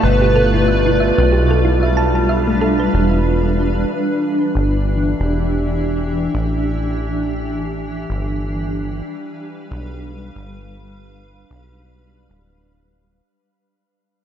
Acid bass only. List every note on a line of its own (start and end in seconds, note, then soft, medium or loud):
0.03 1.13 G1 loud
1.18 2.90 B1 medium
2.94 3.86 E1 loud
4.55 5.15 G1 medium
5.20 6.29 E1 loud
6.35 8.06 A1 medium
8.10 9.02 G1 medium
9.71 10.32 B1 medium
10.36 11.45 G1 loud
11.51 12.29 B1 medium
12.29 13.22 D1 medium